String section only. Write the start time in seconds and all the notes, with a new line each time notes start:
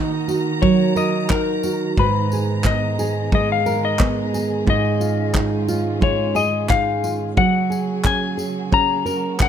Already playing: D#3 A#3 F#4 A#5
1.98 B3 G#4
4.66 G#2 C#4 F4
7.37 C#3 A#3 F#4 G#4